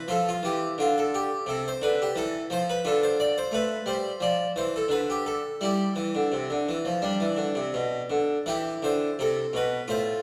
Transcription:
0.00 0.11 B4 medium
0.08 0.34 F3 medium
0.08 0.27 F4 soft
0.08 0.28 A4 medium
0.29 0.45 F4 medium
0.43 0.68 E3 soft
0.43 0.74 G4 medium
0.78 1.28 D3 medium
0.78 0.97 F4 medium
0.98 1.14 A4 medium
1.14 1.43 G4 medium
1.46 1.71 C3 medium
1.46 1.66 A4 medium
1.68 1.83 C5 medium
1.82 2.06 D3 medium
1.82 1.99 B4 medium
2.02 2.17 G4 medium
2.16 2.40 E3 medium
2.16 2.46 A4 medium
2.50 2.74 F3 medium
2.50 2.68 C5 loud
2.70 2.85 B4 medium
2.85 3.33 D3 medium
2.85 5.56 F4 soft
2.85 3.02 A4 medium
3.03 3.19 C5 medium
3.20 3.36 D5 medium
3.38 3.53 C5 medium
3.51 3.76 A3 medium
3.51 3.87 B4 medium
3.86 4.10 G3 medium
3.86 4.20 C5 medium
4.21 4.45 F3 soft
4.21 4.50 D5 medium
4.56 4.80 E3 soft
4.56 4.73 C5 medium
4.76 4.91 A4 medium
4.88 5.40 D3 medium
4.88 5.07 B4 medium
5.10 5.25 G4 medium
5.26 5.61 A4 medium
5.61 5.86 G3 soft
5.61 7.00 E4 soft
5.61 7.77 G4 medium
5.96 6.12 E3 soft
6.15 6.31 D3 soft
6.32 6.48 C3 soft
6.50 6.67 D3 soft
6.69 6.85 E3 soft
6.85 7.02 F3 soft
7.02 7.20 G3 soft
7.02 8.43 D4 soft
7.20 7.37 E3 soft
7.37 7.54 D3 soft
7.55 7.73 C3 soft
7.74 8.00 B2 soft
8.10 8.36 D3 soft
8.46 8.72 E3 medium
8.46 9.84 E4 soft
8.46 8.83 G4 medium
8.83 9.08 D3 soft
8.83 9.14 C5 medium
9.19 9.44 C3 medium
9.19 9.54 A4 medium
9.53 9.78 B2 soft
9.53 9.85 B4 medium
9.88 10.22 A2 soft
9.88 10.22 F4 soft
9.88 10.19 C5 medium

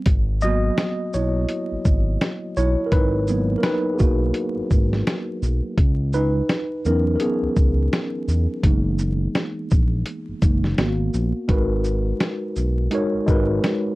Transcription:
0.06 0.71 G#1 loud
0.06 kick loud
0.06 closed hi-hat medium
0.41 1.46 F#3 medium
0.41 1.46 A#3 medium
0.41 1.46 B3 medium
0.41 1.11 F#4 medium
0.41 1.16 D#5 loud
0.41 shaker medium
0.78 snare loud
0.78 closed hi-hat medium
1.13 1.46 B1 medium
1.13 2.18 E4 medium
1.13 2.17 C#5 medium
1.13 shaker medium
1.49 closed hi-hat medium
1.72 1.77 G#1 soft
1.85 2.17 G#1 medium
1.85 kick loud
1.85 shaker medium
2.21 snare loud
2.21 closed hi-hat medium
2.57 2.76 B1 loud
2.57 2.85 E4 medium
2.57 2.88 C#5 loud
2.57 shaker medium
2.86 2.92 A#4 medium
2.92 3.56 G#1 loud
2.92 3.55 D#4 medium
2.92 3.60 B4 loud
2.92 kick loud
2.92 closed hi-hat medium
3.27 4.31 F#3 medium
3.27 4.00 A#3 medium
3.27 4.32 B3 medium
3.27 shaker medium
3.58 3.63 A#4 medium
3.63 3.92 D#4 medium
3.63 3.94 B4 loud
3.63 snare loud
3.63 closed hi-hat medium
3.94 3.99 G#4 medium
3.99 4.32 B1 medium
3.99 5.39 A#3 medium
3.99 5.38 F#4 medium
3.99 kick loud
3.99 shaker medium
4.34 closed hi-hat medium
4.57 4.62 G#1 soft
4.71 5.03 G#1 loud
4.71 kick medium
4.71 shaker soft
4.93 snare soft
5.07 snare loud
5.07 closed hi-hat medium
5.42 5.62 B1 medium
5.42 shaker medium
5.78 6.42 C#2 loud
5.78 kick loud
5.78 closed hi-hat medium
6.13 6.82 D#4 medium
6.13 6.87 B4 loud
6.13 shaker soft
6.49 snare loud
6.49 closed hi-hat medium
6.85 7.17 E2 medium
6.85 8.60 E3 medium
6.85 8.60 F#3 soft
6.85 7.22 B3 soft
6.85 7.01 C#4 medium
6.85 8.61 D#4 medium
6.85 6.99 A#4 medium
6.85 shaker medium
7.16 7.21 A#4 medium
7.20 10.75 B3 medium
7.20 10.74 G#4 medium
7.20 closed hi-hat medium
7.43 7.48 C#2 medium
7.56 7.89 C#2 medium
7.56 kick loud
7.56 shaker medium
7.93 snare loud
7.93 closed hi-hat medium
8.28 8.47 E2 loud
8.28 shaker medium
8.63 9.28 F#1 loud
8.63 9.67 E3 medium
8.63 9.67 G#3 medium
8.63 9.67 A#3 medium
8.63 9.68 D#4 medium
8.63 kick loud
8.63 closed hi-hat medium
8.99 shaker medium
9.35 snare loud
9.35 closed hi-hat medium
9.71 10.04 A#1 medium
9.71 kick loud
9.71 shaker medium
10.06 closed hi-hat medium
10.29 10.34 F#1 soft
10.42 10.74 F#1 loud
10.42 10.75 E3 medium
10.42 10.75 G#3 medium
10.42 10.75 A#3 soft
10.42 10.75 D#4 medium
10.42 kick loud
10.42 closed hi-hat soft
10.42 shaker medium
10.64 snare soft
10.78 11.10 G#1 medium
10.78 11.46 A#3 medium
10.78 11.46 B3 medium
10.78 11.47 F#4 medium
10.78 snare loud
10.78 closed hi-hat medium
11.14 11.33 A#1 loud
11.14 shaker medium
11.48 12.13 G#1 loud
11.48 12.74 G#3 medium
11.48 12.74 D#4 medium
11.48 12.75 F#4 medium
11.48 12.75 A#4 medium
11.48 12.75 B4 medium
11.48 kick loud
11.48 closed hi-hat medium
11.84 shaker medium
12.20 snare loud
12.20 closed hi-hat medium
12.56 12.89 B1 medium
12.56 shaker medium
12.91 13.23 G#3 medium
12.91 13.23 D#4 medium
12.91 13.24 F#4 medium
12.91 13.24 A#4 medium
12.91 13.25 C#5 medium
12.91 closed hi-hat medium
13.14 13.20 G#1 soft
13.26 13.60 G#1 medium
13.26 13.95 G#3 medium
13.26 13.95 D#4 medium
13.26 13.95 F#4 medium
13.26 13.95 A#4 medium
13.26 13.95 B4 loud
13.26 kick loud
13.26 shaker soft
13.64 snare loud
13.64 closed hi-hat medium

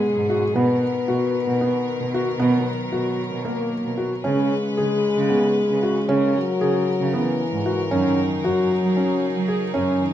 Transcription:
0.00 2.34 B2 medium
0.00 0.51 F#3 medium
0.00 0.56 G#3 loud
0.00 0.51 C#4 medium
0.00 0.54 G#4 medium
0.16 0.38 G#2 medium
0.30 0.43 F#4 medium
0.55 0.77 B2 medium
0.55 4.21 D#3 medium
0.55 3.17 B3 medium
0.55 0.83 B3 medium
0.55 4.21 A#4 medium
1.08 1.30 B2 medium
1.08 1.36 F#4 medium
1.47 1.69 B2 medium
1.61 1.89 B3 medium
1.99 2.21 B2 medium
2.14 2.28 F#4 medium
2.39 2.61 B2 loud
2.39 4.23 F#3 medium
2.39 2.67 B3 medium
2.92 3.14 B2 medium
2.92 3.20 F#4 medium
3.32 3.54 B2 medium
3.44 3.94 A#3 loud
3.44 3.73 A#3 medium
3.85 4.07 B2 medium
3.97 4.12 F#4 medium
4.23 10.13 C#3 medium
4.23 4.47 C#3 medium
4.23 6.32 G#3 loud
4.23 7.88 C#4 medium
4.23 4.52 C#4 medium
4.23 6.07 B4 medium
4.77 5.00 C#3 medium
4.77 5.05 G#4 medium
5.17 5.39 C#3 medium
5.30 5.58 B3 medium
5.70 5.92 C#3 medium
5.83 5.97 F#4 medium
6.09 6.31 C#3 medium
6.09 6.37 C#4 medium
6.09 10.13 A#4 medium
6.36 7.16 F#3 loud
6.61 6.83 C#3 medium
6.61 6.89 G#4 medium
7.00 7.22 C#3 medium
7.14 7.94 E3 medium
7.14 7.41 B3 medium
7.52 7.74 G#2 medium
7.66 7.79 F#4 medium
7.91 8.13 F#2 medium
7.91 8.47 D#3 medium
7.91 8.19 C#4 medium
7.91 10.13 D#4 medium
7.91 10.13 G#4 medium
8.43 8.65 F#2 medium
8.43 9.74 F#3 medium
8.43 8.72 F#4 medium
8.82 9.04 F#3 medium
8.97 9.24 C#4 medium
9.35 9.57 F#3 medium
9.48 9.62 G#4 medium
9.74 9.96 F#2 medium
9.74 10.02 C#4 medium
9.99 10.13 D#3 loud

